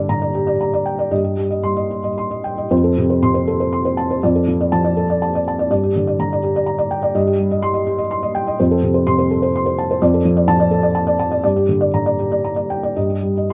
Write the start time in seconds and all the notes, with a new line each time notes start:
Already playing: G2 D3 G4 D5
0.09 D3 A#5
0.22 D5
0.35 G4
0.47 D5
0.61 A#5
0.74 D5
0.86 G5
0.99 D5
1.11 G2 D#5
1.24 G4
1.37 G3
1.50 D#5
1.63 G3 C6
1.77 D#5
1.91 G4
2.04 D#5
2.18 C6
2.31 D#5
2.44 G5
2.58 D#5
2.71 F2 C5
2.84 A4
2.98 C3
3.10 C5
3.23 C3 C6
3.34 C5
3.48 A4
3.60 C5
3.73 C6
3.85 C5
3.97 A5
4.11 C5
4.23 F2 D5
4.35 A4
4.47 F3
4.61 D5
4.72 F3 A5
4.85 D5
4.97 A4
5.10 D5
5.22 A5
5.35 D5
5.48 A5
5.59 D5
5.70 G2 D5
5.83 G4
5.96 D3
6.07 D5
6.19 D3 A#5
6.33 D5
6.43 G4
6.56 D5
6.66 A#5
6.79 D5
6.91 G5
7.03 D5
7.15 G2 D#5
7.27 G4
7.39 G3
7.51 D#5
7.62 G3 C6
7.74 D#5
7.87 G4
7.98 D#5
8.11 C6
8.23 D#5
8.35 G5
8.47 D#5
8.60 F2 C5
8.71 A4
8.83 C3
8.94 C5
9.07 C3 C6
9.18 C5
9.31 A4
9.42 C5
9.56 C6
9.66 C5
9.78 A5
9.91 C5
10.02 F2 D5
10.14 A4
10.25 F3
10.37 D5
10.48 F3 A5
10.60 D5
10.71 A4
10.83 D5
10.95 A5
11.07 D5
11.19 A5
11.32 D5
11.44 G2 D5
11.56 G4
11.69 D3
11.81 D5
11.94 D3 A#5
12.06 D5
12.19 G4
12.32 D5
12.44 A#5
12.56 D5
12.70 G5
12.83 D5
12.96 G2 D#5
13.10 G4
13.23 G3
13.37 D#5